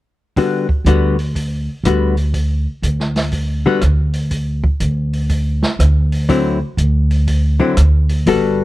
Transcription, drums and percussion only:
0.36 kick, open hi-hat
0.69 kick
0.86 closed hi-hat
1.19 open hi-hat
1.35 kick, open hi-hat
1.85 cross-stick, closed hi-hat
2.17 open hi-hat
2.34 kick, open hi-hat
2.83 closed hi-hat
3.00 snare
3.16 snare, open hi-hat
3.32 kick, open hi-hat
3.81 cross-stick, closed hi-hat
4.13 open hi-hat
4.31 kick, open hi-hat
4.64 kick
4.80 closed hi-hat
5.13 open hi-hat
5.29 kick, open hi-hat
5.62 snare
5.80 cross-stick, closed hi-hat
6.12 open hi-hat
6.29 kick, open hi-hat
6.78 closed hi-hat
7.11 open hi-hat
7.27 kick, open hi-hat
7.77 cross-stick, closed hi-hat
8.09 open hi-hat
8.26 kick, open hi-hat

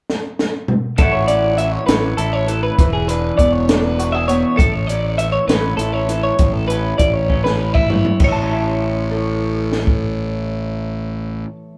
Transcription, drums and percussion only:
0.10 snare
0.39 snare
0.68 mid tom
0.98 kick, closed hi-hat
1.28 closed hi-hat
1.58 closed hi-hat
1.89 snare, closed hi-hat
2.18 closed hi-hat
2.48 closed hi-hat
2.79 kick, closed hi-hat
3.09 closed hi-hat
3.39 kick, closed hi-hat
3.69 snare, closed hi-hat
4.00 closed hi-hat
4.29 closed hi-hat
4.59 kick, closed hi-hat
4.89 closed hi-hat
5.19 closed hi-hat
5.49 snare, closed hi-hat
5.79 closed hi-hat
6.09 closed hi-hat
6.39 kick, closed hi-hat
6.70 closed hi-hat
6.99 kick, closed hi-hat
7.30 kick
7.46 snare
7.75 kick
7.90 floor tom
8.05 floor tom
8.20 kick, crash
9.72 snare
9.87 kick

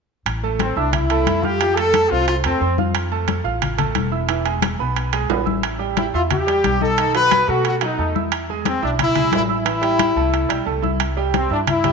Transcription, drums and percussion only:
0.26 high conga, high timbale
0.43 high conga
0.59 high conga, high timbale
0.76 high conga
0.93 high conga, low conga, high timbale
1.10 high conga, high timbale
1.27 high conga, high timbale
1.44 high conga
1.60 high conga, high timbale
1.77 high conga, high timbale
1.94 high conga, high timbale
2.11 high conga
2.28 high conga, high timbale
2.44 high conga, high timbale
2.62 high conga
2.78 high conga
2.95 high conga, high timbale
3.12 high conga
3.28 high conga, high timbale
3.46 high conga
3.62 high conga, low conga, high timbale
3.79 high conga, low conga, high timbale
3.95 high conga, high timbale
4.29 high conga, high timbale
4.46 high conga, high timbale
4.62 high conga, high timbale
4.80 high conga
4.96 high conga, high timbale
5.13 high conga, high timbale
5.30 high conga, low timbale
5.47 high conga
5.63 high timbale
5.80 high conga
5.97 high conga, high timbale
6.15 high conga
6.31 high conga, low conga, high timbale
6.47 high conga, high timbale
6.64 high conga, high timbale
6.81 high conga
6.98 high conga, high timbale
7.15 high conga, high timbale
7.31 high conga, high timbale
7.49 high conga
7.65 high conga, high timbale
7.81 high conga, high timbale
7.99 high conga
8.16 high conga
8.32 high conga, high timbale
8.50 high conga
8.65 high conga, high timbale
8.83 high conga
8.99 high conga, low conga, high timbale
9.16 high conga, low conga, high timbale
9.32 high conga, high timbale, low timbale
9.66 high conga, high timbale
9.83 high conga, high timbale
9.99 high conga, high timbale
10.16 high conga
10.33 high conga, high timbale
10.50 high conga, high timbale
10.67 high conga
10.84 high conga
11.00 high conga, high timbale
11.17 high conga
11.34 high conga, high timbale
11.51 high conga
11.67 high conga, low conga, high timbale
11.84 high conga, low conga, high timbale

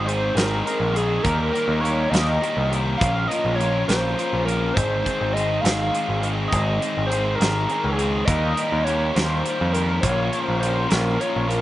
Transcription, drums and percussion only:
0.09 closed hi-hat
0.37 snare, closed hi-hat
0.67 closed hi-hat
0.96 closed hi-hat
1.25 kick, closed hi-hat
1.55 closed hi-hat
1.85 closed hi-hat
2.14 snare, closed hi-hat
2.43 closed hi-hat
2.73 closed hi-hat
3.01 kick, closed hi-hat
3.31 closed hi-hat
3.61 closed hi-hat
3.89 snare, closed hi-hat
4.19 closed hi-hat
4.48 closed hi-hat
4.77 kick, closed hi-hat
5.06 kick, closed hi-hat
5.37 closed hi-hat
5.65 snare, closed hi-hat
5.94 closed hi-hat
6.23 closed hi-hat
6.53 kick, closed hi-hat
6.82 closed hi-hat
7.12 closed hi-hat
7.41 snare, closed hi-hat
7.69 closed hi-hat
7.99 closed hi-hat
8.28 kick, closed hi-hat
8.57 closed hi-hat
8.87 closed hi-hat
9.16 snare, closed hi-hat
9.46 closed hi-hat
9.74 closed hi-hat
10.03 kick, closed hi-hat
10.33 closed hi-hat
10.63 closed hi-hat
10.91 snare, closed hi-hat
11.21 closed hi-hat
11.50 closed hi-hat

